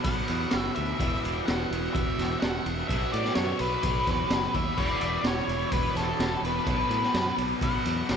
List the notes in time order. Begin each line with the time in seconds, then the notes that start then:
Already playing: B2 F#3 B3
0.04 B1 F#5, kick, ride
0.28 E2, ride
0.51 F#1, snare, ride
0.58 E5
0.75 D2 E5, ride
0.98 E1 E2 B2 E3, kick, ride
1.24 E1, ride
1.46 E1 F#5, snare, ride
1.71 E1, ride
1.94 E1 E5, kick, ride
2.18 E1, snare, ride
2.40 E1 F#5, snare, ride
2.66 E1, ride
2.87 B1 B2 F#3 B3 E5, kick, ride
3.12 A2 D5, ride
3.24 snare
3.35 F#2 C#5, snare, ride
3.59 B1 B4, ride
3.83 B1, kick, ride
4.07 E2, kick, snare, ride
4.30 F#1, snare, ride
4.54 D#2 E5, kick, ride
4.76 E1 E2 B2 E3 D5, kick, crash
5.00 E1, ride
5.24 E1 C#5, snare, ride
5.48 E1, ride
5.72 E1 B4, kick, ride
5.96 E1 A4, snare, ride
6.19 E1, snare, ride
6.42 E1 B4, ride
6.65 B1 B2 F#3 B3 B4, kick, ride
6.90 A2, ride
7.02 snare
7.14 F#2, snare, ride
7.38 B1, ride
7.61 B1 F#5, kick, ride
7.85 E2, ride
8.09 F#1, snare, ride